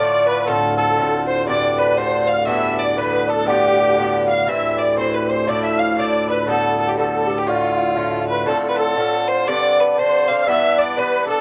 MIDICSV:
0, 0, Header, 1, 5, 480
1, 0, Start_track
1, 0, Tempo, 499584
1, 458, Time_signature, 2, 2, 24, 8
1, 10961, End_track
2, 0, Start_track
2, 0, Title_t, "Accordion"
2, 0, Program_c, 0, 21
2, 0, Note_on_c, 0, 74, 79
2, 254, Note_on_c, 0, 71, 72
2, 413, Note_off_c, 0, 74, 0
2, 435, Note_off_c, 0, 71, 0
2, 436, Note_on_c, 0, 69, 68
2, 574, Note_off_c, 0, 69, 0
2, 738, Note_on_c, 0, 69, 82
2, 1191, Note_off_c, 0, 69, 0
2, 1223, Note_on_c, 0, 72, 74
2, 1401, Note_off_c, 0, 72, 0
2, 1425, Note_on_c, 0, 74, 80
2, 1696, Note_off_c, 0, 74, 0
2, 1702, Note_on_c, 0, 71, 83
2, 1880, Note_off_c, 0, 71, 0
2, 1892, Note_on_c, 0, 72, 80
2, 2169, Note_off_c, 0, 72, 0
2, 2198, Note_on_c, 0, 77, 75
2, 2281, Note_off_c, 0, 77, 0
2, 2366, Note_on_c, 0, 76, 79
2, 2646, Note_off_c, 0, 76, 0
2, 2679, Note_on_c, 0, 74, 83
2, 2860, Note_on_c, 0, 71, 83
2, 2868, Note_off_c, 0, 74, 0
2, 3153, Note_on_c, 0, 69, 76
2, 3163, Note_off_c, 0, 71, 0
2, 3327, Note_off_c, 0, 69, 0
2, 3335, Note_on_c, 0, 67, 82
2, 4074, Note_off_c, 0, 67, 0
2, 4102, Note_on_c, 0, 77, 74
2, 4300, Note_on_c, 0, 76, 79
2, 4301, Note_off_c, 0, 77, 0
2, 4582, Note_on_c, 0, 74, 80
2, 4604, Note_off_c, 0, 76, 0
2, 4762, Note_off_c, 0, 74, 0
2, 4762, Note_on_c, 0, 72, 74
2, 4908, Note_off_c, 0, 72, 0
2, 4919, Note_on_c, 0, 71, 67
2, 5061, Note_off_c, 0, 71, 0
2, 5070, Note_on_c, 0, 72, 70
2, 5255, Note_on_c, 0, 74, 76
2, 5265, Note_off_c, 0, 72, 0
2, 5403, Note_on_c, 0, 76, 73
2, 5410, Note_off_c, 0, 74, 0
2, 5547, Note_on_c, 0, 77, 82
2, 5558, Note_off_c, 0, 76, 0
2, 5725, Note_off_c, 0, 77, 0
2, 5744, Note_on_c, 0, 74, 81
2, 6034, Note_on_c, 0, 71, 66
2, 6046, Note_off_c, 0, 74, 0
2, 6218, Note_on_c, 0, 69, 71
2, 6227, Note_off_c, 0, 71, 0
2, 6489, Note_off_c, 0, 69, 0
2, 6504, Note_on_c, 0, 69, 70
2, 6595, Note_on_c, 0, 67, 65
2, 6606, Note_off_c, 0, 69, 0
2, 6689, Note_off_c, 0, 67, 0
2, 6699, Note_on_c, 0, 69, 77
2, 7098, Note_on_c, 0, 67, 61
2, 7100, Note_off_c, 0, 69, 0
2, 7174, Note_on_c, 0, 65, 61
2, 7190, Note_off_c, 0, 67, 0
2, 7914, Note_off_c, 0, 65, 0
2, 7955, Note_on_c, 0, 71, 64
2, 8143, Note_on_c, 0, 69, 68
2, 8147, Note_off_c, 0, 71, 0
2, 8339, Note_off_c, 0, 69, 0
2, 8360, Note_on_c, 0, 71, 56
2, 8436, Note_on_c, 0, 69, 80
2, 8439, Note_off_c, 0, 71, 0
2, 8882, Note_off_c, 0, 69, 0
2, 8909, Note_on_c, 0, 72, 72
2, 9085, Note_off_c, 0, 72, 0
2, 9101, Note_on_c, 0, 74, 81
2, 9498, Note_off_c, 0, 74, 0
2, 9516, Note_on_c, 0, 74, 60
2, 9574, Note_off_c, 0, 74, 0
2, 9576, Note_on_c, 0, 72, 87
2, 10007, Note_on_c, 0, 77, 62
2, 10024, Note_off_c, 0, 72, 0
2, 10048, Note_on_c, 0, 76, 90
2, 10057, Note_off_c, 0, 77, 0
2, 10348, Note_on_c, 0, 74, 85
2, 10356, Note_off_c, 0, 76, 0
2, 10538, Note_on_c, 0, 71, 80
2, 10542, Note_off_c, 0, 74, 0
2, 10811, Note_off_c, 0, 71, 0
2, 10821, Note_on_c, 0, 69, 73
2, 10961, Note_off_c, 0, 69, 0
2, 10961, End_track
3, 0, Start_track
3, 0, Title_t, "Fiddle"
3, 0, Program_c, 1, 110
3, 0, Note_on_c, 1, 74, 91
3, 266, Note_off_c, 1, 74, 0
3, 272, Note_on_c, 1, 71, 90
3, 398, Note_off_c, 1, 71, 0
3, 404, Note_on_c, 1, 71, 75
3, 461, Note_on_c, 1, 69, 100
3, 476, Note_off_c, 1, 71, 0
3, 740, Note_off_c, 1, 69, 0
3, 746, Note_on_c, 1, 69, 88
3, 1196, Note_off_c, 1, 69, 0
3, 1229, Note_on_c, 1, 72, 84
3, 1404, Note_off_c, 1, 72, 0
3, 1421, Note_on_c, 1, 74, 105
3, 1716, Note_on_c, 1, 71, 90
3, 1731, Note_off_c, 1, 74, 0
3, 1897, Note_on_c, 1, 72, 97
3, 1911, Note_off_c, 1, 71, 0
3, 2184, Note_on_c, 1, 77, 99
3, 2199, Note_off_c, 1, 72, 0
3, 2364, Note_off_c, 1, 77, 0
3, 2370, Note_on_c, 1, 76, 119
3, 2675, Note_on_c, 1, 74, 95
3, 2690, Note_off_c, 1, 76, 0
3, 2865, Note_on_c, 1, 71, 93
3, 2879, Note_off_c, 1, 74, 0
3, 3166, Note_on_c, 1, 69, 88
3, 3180, Note_off_c, 1, 71, 0
3, 3339, Note_off_c, 1, 69, 0
3, 3345, Note_on_c, 1, 67, 105
3, 4079, Note_off_c, 1, 67, 0
3, 4123, Note_on_c, 1, 77, 95
3, 4310, Note_on_c, 1, 76, 109
3, 4325, Note_off_c, 1, 77, 0
3, 4597, Note_on_c, 1, 74, 91
3, 4612, Note_off_c, 1, 76, 0
3, 4779, Note_off_c, 1, 74, 0
3, 4785, Note_on_c, 1, 72, 89
3, 4936, Note_on_c, 1, 71, 77
3, 4951, Note_off_c, 1, 72, 0
3, 5088, Note_on_c, 1, 72, 84
3, 5102, Note_off_c, 1, 71, 0
3, 5273, Note_on_c, 1, 74, 94
3, 5287, Note_off_c, 1, 72, 0
3, 5415, Note_off_c, 1, 74, 0
3, 5427, Note_on_c, 1, 76, 86
3, 5565, Note_on_c, 1, 77, 85
3, 5579, Note_off_c, 1, 76, 0
3, 5757, Note_on_c, 1, 74, 96
3, 5771, Note_off_c, 1, 77, 0
3, 6044, Note_off_c, 1, 74, 0
3, 6051, Note_on_c, 1, 71, 76
3, 6218, Note_off_c, 1, 71, 0
3, 6236, Note_on_c, 1, 69, 94
3, 6503, Note_off_c, 1, 69, 0
3, 6535, Note_on_c, 1, 69, 78
3, 6617, Note_on_c, 1, 67, 73
3, 6631, Note_off_c, 1, 69, 0
3, 6694, Note_off_c, 1, 67, 0
3, 6700, Note_on_c, 1, 69, 91
3, 7094, Note_on_c, 1, 67, 66
3, 7108, Note_off_c, 1, 69, 0
3, 7182, Note_on_c, 1, 65, 83
3, 7197, Note_off_c, 1, 67, 0
3, 7950, Note_off_c, 1, 65, 0
3, 7956, Note_on_c, 1, 71, 85
3, 8129, Note_off_c, 1, 71, 0
3, 8138, Note_on_c, 1, 69, 100
3, 8234, Note_off_c, 1, 69, 0
3, 8349, Note_on_c, 1, 71, 70
3, 8419, Note_on_c, 1, 69, 91
3, 8434, Note_off_c, 1, 71, 0
3, 8914, Note_on_c, 1, 72, 98
3, 8928, Note_off_c, 1, 69, 0
3, 9103, Note_on_c, 1, 74, 115
3, 9118, Note_off_c, 1, 72, 0
3, 9415, Note_on_c, 1, 71, 97
3, 9429, Note_off_c, 1, 74, 0
3, 9597, Note_on_c, 1, 72, 95
3, 9612, Note_off_c, 1, 71, 0
3, 9879, Note_on_c, 1, 77, 105
3, 9893, Note_off_c, 1, 72, 0
3, 10062, Note_off_c, 1, 77, 0
3, 10080, Note_on_c, 1, 76, 122
3, 10360, Note_on_c, 1, 74, 102
3, 10374, Note_off_c, 1, 76, 0
3, 10554, Note_on_c, 1, 71, 103
3, 10569, Note_off_c, 1, 74, 0
3, 10840, Note_off_c, 1, 71, 0
3, 10851, Note_on_c, 1, 69, 93
3, 10961, Note_off_c, 1, 69, 0
3, 10961, End_track
4, 0, Start_track
4, 0, Title_t, "Bouzouki"
4, 0, Program_c, 2, 25
4, 0, Note_on_c, 2, 45, 66
4, 0, Note_on_c, 2, 50, 64
4, 0, Note_on_c, 2, 57, 69
4, 0, Note_on_c, 2, 65, 61
4, 438, Note_off_c, 2, 45, 0
4, 449, Note_on_c, 2, 45, 72
4, 452, Note_off_c, 2, 50, 0
4, 456, Note_on_c, 2, 50, 68
4, 458, Note_off_c, 2, 65, 0
4, 459, Note_off_c, 2, 57, 0
4, 463, Note_on_c, 2, 60, 77
4, 469, Note_on_c, 2, 65, 75
4, 914, Note_off_c, 2, 45, 0
4, 925, Note_on_c, 2, 45, 57
4, 936, Note_off_c, 2, 50, 0
4, 937, Note_off_c, 2, 60, 0
4, 940, Note_on_c, 2, 50, 54
4, 944, Note_off_c, 2, 65, 0
4, 949, Note_on_c, 2, 60, 58
4, 956, Note_on_c, 2, 65, 60
4, 1407, Note_off_c, 2, 45, 0
4, 1411, Note_on_c, 2, 43, 67
4, 1416, Note_off_c, 2, 60, 0
4, 1419, Note_off_c, 2, 50, 0
4, 1423, Note_on_c, 2, 50, 64
4, 1427, Note_off_c, 2, 65, 0
4, 1427, Note_on_c, 2, 60, 77
4, 1431, Note_on_c, 2, 62, 78
4, 1878, Note_off_c, 2, 43, 0
4, 1889, Note_on_c, 2, 43, 54
4, 1893, Note_off_c, 2, 50, 0
4, 1897, Note_on_c, 2, 50, 57
4, 1898, Note_off_c, 2, 60, 0
4, 1909, Note_on_c, 2, 60, 57
4, 1914, Note_off_c, 2, 62, 0
4, 1918, Note_on_c, 2, 62, 59
4, 2352, Note_off_c, 2, 43, 0
4, 2364, Note_on_c, 2, 43, 69
4, 2367, Note_off_c, 2, 50, 0
4, 2370, Note_on_c, 2, 52, 72
4, 2376, Note_off_c, 2, 60, 0
4, 2380, Note_off_c, 2, 62, 0
4, 2380, Note_on_c, 2, 59, 83
4, 2384, Note_on_c, 2, 62, 81
4, 2830, Note_off_c, 2, 43, 0
4, 2840, Note_off_c, 2, 52, 0
4, 2842, Note_on_c, 2, 43, 55
4, 2850, Note_off_c, 2, 59, 0
4, 2851, Note_on_c, 2, 52, 57
4, 2858, Note_off_c, 2, 62, 0
4, 2861, Note_on_c, 2, 59, 63
4, 2870, Note_on_c, 2, 62, 62
4, 3129, Note_off_c, 2, 62, 0
4, 3140, Note_on_c, 2, 62, 47
4, 3144, Note_off_c, 2, 59, 0
4, 3145, Note_off_c, 2, 43, 0
4, 3150, Note_off_c, 2, 52, 0
4, 3156, Note_on_c, 2, 59, 44
4, 3169, Note_on_c, 2, 52, 39
4, 3324, Note_on_c, 2, 43, 64
4, 3329, Note_off_c, 2, 59, 0
4, 3332, Note_off_c, 2, 52, 0
4, 3334, Note_off_c, 2, 62, 0
4, 3336, Note_on_c, 2, 50, 77
4, 3341, Note_on_c, 2, 59, 73
4, 3345, Note_on_c, 2, 62, 76
4, 3801, Note_off_c, 2, 43, 0
4, 3810, Note_off_c, 2, 50, 0
4, 3812, Note_on_c, 2, 43, 57
4, 3821, Note_off_c, 2, 59, 0
4, 3822, Note_on_c, 2, 50, 55
4, 3824, Note_off_c, 2, 62, 0
4, 3831, Note_on_c, 2, 59, 64
4, 3839, Note_on_c, 2, 62, 61
4, 4279, Note_off_c, 2, 43, 0
4, 4290, Note_on_c, 2, 43, 63
4, 4293, Note_off_c, 2, 50, 0
4, 4297, Note_on_c, 2, 52, 71
4, 4300, Note_off_c, 2, 59, 0
4, 4304, Note_off_c, 2, 62, 0
4, 4304, Note_on_c, 2, 60, 68
4, 4308, Note_on_c, 2, 64, 74
4, 4753, Note_off_c, 2, 43, 0
4, 4765, Note_on_c, 2, 43, 58
4, 4769, Note_off_c, 2, 52, 0
4, 4775, Note_off_c, 2, 60, 0
4, 4780, Note_on_c, 2, 52, 56
4, 4785, Note_off_c, 2, 64, 0
4, 4786, Note_on_c, 2, 60, 55
4, 4798, Note_on_c, 2, 64, 59
4, 5249, Note_off_c, 2, 43, 0
4, 5253, Note_on_c, 2, 45, 72
4, 5256, Note_off_c, 2, 52, 0
4, 5259, Note_on_c, 2, 53, 68
4, 5262, Note_off_c, 2, 64, 0
4, 5264, Note_off_c, 2, 60, 0
4, 5268, Note_on_c, 2, 62, 73
4, 5274, Note_on_c, 2, 64, 76
4, 5723, Note_off_c, 2, 45, 0
4, 5735, Note_off_c, 2, 53, 0
4, 5735, Note_on_c, 2, 45, 55
4, 5747, Note_on_c, 2, 53, 57
4, 5749, Note_off_c, 2, 64, 0
4, 5754, Note_off_c, 2, 62, 0
4, 5757, Note_on_c, 2, 62, 60
4, 5766, Note_on_c, 2, 64, 63
4, 6015, Note_off_c, 2, 64, 0
4, 6027, Note_on_c, 2, 64, 45
4, 6033, Note_off_c, 2, 45, 0
4, 6035, Note_off_c, 2, 62, 0
4, 6039, Note_off_c, 2, 53, 0
4, 6046, Note_on_c, 2, 62, 43
4, 6057, Note_on_c, 2, 53, 40
4, 6211, Note_on_c, 2, 45, 69
4, 6216, Note_off_c, 2, 53, 0
4, 6218, Note_off_c, 2, 64, 0
4, 6219, Note_off_c, 2, 62, 0
4, 6219, Note_on_c, 2, 50, 74
4, 6223, Note_on_c, 2, 59, 80
4, 6230, Note_on_c, 2, 67, 79
4, 6684, Note_off_c, 2, 45, 0
4, 6695, Note_on_c, 2, 45, 56
4, 6700, Note_off_c, 2, 50, 0
4, 6703, Note_off_c, 2, 59, 0
4, 6704, Note_on_c, 2, 50, 61
4, 6707, Note_off_c, 2, 67, 0
4, 6713, Note_on_c, 2, 59, 61
4, 6722, Note_on_c, 2, 67, 62
4, 6971, Note_off_c, 2, 67, 0
4, 6983, Note_on_c, 2, 67, 46
4, 6987, Note_off_c, 2, 59, 0
4, 6993, Note_off_c, 2, 45, 0
4, 6997, Note_off_c, 2, 50, 0
4, 6998, Note_on_c, 2, 59, 42
4, 7013, Note_on_c, 2, 50, 39
4, 7173, Note_off_c, 2, 50, 0
4, 7173, Note_on_c, 2, 45, 72
4, 7176, Note_off_c, 2, 67, 0
4, 7184, Note_off_c, 2, 59, 0
4, 7184, Note_on_c, 2, 50, 69
4, 7188, Note_on_c, 2, 57, 73
4, 7197, Note_on_c, 2, 65, 77
4, 7638, Note_off_c, 2, 45, 0
4, 7650, Note_on_c, 2, 45, 53
4, 7654, Note_off_c, 2, 50, 0
4, 7657, Note_off_c, 2, 57, 0
4, 7658, Note_on_c, 2, 50, 56
4, 7666, Note_off_c, 2, 65, 0
4, 7669, Note_on_c, 2, 57, 61
4, 7678, Note_on_c, 2, 65, 60
4, 8115, Note_off_c, 2, 45, 0
4, 8127, Note_on_c, 2, 45, 76
4, 8134, Note_off_c, 2, 50, 0
4, 8138, Note_on_c, 2, 50, 78
4, 8140, Note_off_c, 2, 65, 0
4, 8142, Note_off_c, 2, 57, 0
4, 8145, Note_on_c, 2, 60, 74
4, 8152, Note_on_c, 2, 65, 79
4, 8597, Note_off_c, 2, 45, 0
4, 8608, Note_on_c, 2, 45, 55
4, 8615, Note_off_c, 2, 50, 0
4, 8616, Note_off_c, 2, 60, 0
4, 8619, Note_on_c, 2, 50, 64
4, 8627, Note_off_c, 2, 65, 0
4, 8627, Note_on_c, 2, 60, 61
4, 8639, Note_on_c, 2, 65, 61
4, 9093, Note_off_c, 2, 45, 0
4, 9096, Note_on_c, 2, 43, 81
4, 9099, Note_off_c, 2, 60, 0
4, 9101, Note_off_c, 2, 50, 0
4, 9105, Note_on_c, 2, 50, 77
4, 9110, Note_off_c, 2, 65, 0
4, 9110, Note_on_c, 2, 60, 77
4, 9117, Note_on_c, 2, 62, 78
4, 9564, Note_off_c, 2, 43, 0
4, 9576, Note_on_c, 2, 43, 59
4, 9581, Note_off_c, 2, 50, 0
4, 9585, Note_off_c, 2, 60, 0
4, 9585, Note_on_c, 2, 50, 59
4, 9596, Note_on_c, 2, 60, 60
4, 9599, Note_off_c, 2, 62, 0
4, 9603, Note_on_c, 2, 62, 69
4, 9859, Note_off_c, 2, 62, 0
4, 9870, Note_on_c, 2, 62, 51
4, 9871, Note_off_c, 2, 43, 0
4, 9874, Note_off_c, 2, 60, 0
4, 9876, Note_off_c, 2, 50, 0
4, 9885, Note_on_c, 2, 60, 47
4, 9901, Note_on_c, 2, 50, 44
4, 10057, Note_on_c, 2, 43, 75
4, 10058, Note_off_c, 2, 62, 0
4, 10065, Note_off_c, 2, 50, 0
4, 10066, Note_off_c, 2, 60, 0
4, 10069, Note_on_c, 2, 52, 82
4, 10072, Note_on_c, 2, 59, 79
4, 10083, Note_on_c, 2, 62, 89
4, 10522, Note_off_c, 2, 43, 0
4, 10532, Note_off_c, 2, 52, 0
4, 10533, Note_on_c, 2, 43, 56
4, 10540, Note_off_c, 2, 59, 0
4, 10543, Note_on_c, 2, 52, 60
4, 10551, Note_off_c, 2, 62, 0
4, 10552, Note_on_c, 2, 59, 63
4, 10561, Note_on_c, 2, 62, 66
4, 10813, Note_off_c, 2, 62, 0
4, 10825, Note_on_c, 2, 62, 50
4, 10829, Note_off_c, 2, 43, 0
4, 10830, Note_off_c, 2, 59, 0
4, 10834, Note_off_c, 2, 52, 0
4, 10842, Note_on_c, 2, 59, 47
4, 10856, Note_on_c, 2, 52, 35
4, 10961, Note_off_c, 2, 52, 0
4, 10961, Note_off_c, 2, 59, 0
4, 10961, Note_off_c, 2, 62, 0
4, 10961, End_track
5, 0, Start_track
5, 0, Title_t, "Harmonium"
5, 0, Program_c, 3, 20
5, 461, Note_on_c, 3, 45, 64
5, 468, Note_on_c, 3, 38, 69
5, 4290, Note_off_c, 3, 45, 0
5, 4295, Note_off_c, 3, 38, 0
5, 4304, Note_on_c, 3, 45, 65
5, 4310, Note_on_c, 3, 38, 68
5, 8202, Note_off_c, 3, 45, 0
5, 8205, Note_off_c, 3, 38, 0
5, 10961, End_track
0, 0, End_of_file